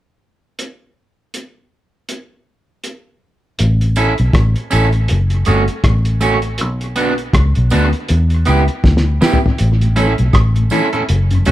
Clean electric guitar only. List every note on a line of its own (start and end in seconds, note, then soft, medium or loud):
3.97 4.12 C#4 medium
3.97 4.12 E4 medium
3.97 4.13 A4 medium
4.71 4.87 C#4 medium
4.71 4.87 E4 medium
4.71 4.88 A4 loud
5.47 5.62 A3 medium
5.47 5.63 C#4 medium
5.47 5.63 F#4 medium
6.21 6.37 A3 medium
6.21 6.37 C#4 medium
6.21 6.38 F#4 medium
6.96 7.12 B3 medium
6.96 7.13 D4 medium
6.96 7.13 F#4 medium
7.71 7.87 B3 medium
7.71 7.87 D4 loud
7.71 7.88 F#4 medium
8.46 8.62 B3 medium
8.46 8.62 E4 medium
8.46 8.63 G4 medium
9.21 9.37 B3 medium
9.21 9.37 E4 medium
9.21 9.38 G4 medium
9.96 10.12 C#4 medium
9.96 10.12 E4 medium
9.96 10.12 A4 medium
10.71 10.87 C#4 medium
10.71 10.87 E4 medium
10.71 10.88 A4 medium
10.93 11.02 C#4 soft
10.93 11.02 E4 medium
10.93 11.02 A4 medium
11.46 11.52 A3 medium
11.46 11.52 C#4 medium
11.46 11.52 F#4 medium